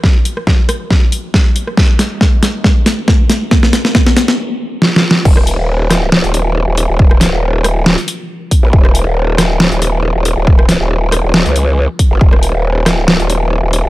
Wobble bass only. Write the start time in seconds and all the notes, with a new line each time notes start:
5.25 D#1
5.59 D#1
6.24 D#1
6.67 D#1
6.89 D#1
7.33 D#1
7.78 D1
8.63 A#1
8.73 D#1
9.07 D#1
9.52 D1
9.72 D#1
10.15 D#1
10.37 D#1
10.81 D#1
11.24 D#1
11.46 C#2
12.11 F#1
12.21 D#1
12.54 D#1
13.20 D#1
13.63 D#1
13.85 D#1